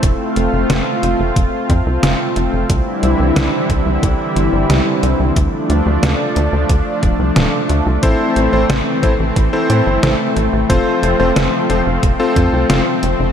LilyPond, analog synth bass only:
\new Staff \with { instrumentName = "Analog synth bass" } { \clef bass \time 4/4 \key f \lydian \tempo 4 = 90 f,,16 r16 f,,16 f,,16 f,,16 r16 f,,16 f,,16 f,,16 r16 f,16 c,16 f,,16 r16 f,,16 f,,16 | c,16 r16 c,16 c,16 c,16 r16 c,16 c,16 c,16 r16 g,,16 g,,16 c,16 r16 c,16 c,16 | d,16 r16 d,16 d,16 d,16 r16 d,16 d,16 d,16 r16 d,,16 c,16 d,,16 r16 d,16 c,16 | a,,16 r16 a,,16 a,,16 a,,16 r16 a,,16 a,,16 a,,16 r16 a,16 g,,16 a,,16 r16 a,,16 a,,16 |
f,,16 r16 f,,16 f,,16 f,,16 r16 f,,16 f,,16 f,,16 r16 f,16 c,16 f,,16 r16 f,,16 f,,16 | }